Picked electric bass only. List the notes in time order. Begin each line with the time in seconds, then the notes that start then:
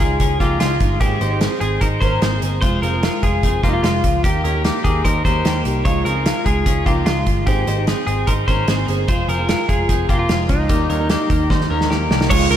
0.00 C#2
0.20 C#2
0.40 C#2
0.60 C#2
0.81 G1
1.01 G#1
1.21 G#1
1.61 G#1
1.81 G#1
2.02 G#1
2.22 G#1
2.42 G1
2.62 F1
2.83 F1
3.23 F1
3.43 F1
3.64 F1
3.83 F1
4.04 C#2
4.24 D#2
4.44 D#2
4.85 D#2
5.05 D#2
5.25 D#2
5.45 D#2
5.65 C2
5.86 C#2
6.05 C#2
6.46 C#2
6.66 C#2
6.86 C#2
7.06 C#2
7.27 G1
7.47 G#1
7.67 G#1
8.07 G#1
8.28 G#1
8.48 G#1
8.68 G#1
8.88 G1
9.08 F1
9.29 F1
9.69 F1
9.89 F1
10.09 F1
10.30 F1
10.50 C#2
10.70 D#2
10.90 D#2
11.30 D#2
11.50 D#2
11.70 D#2
11.91 D#2
12.10 C2
12.31 C#2
12.51 C#2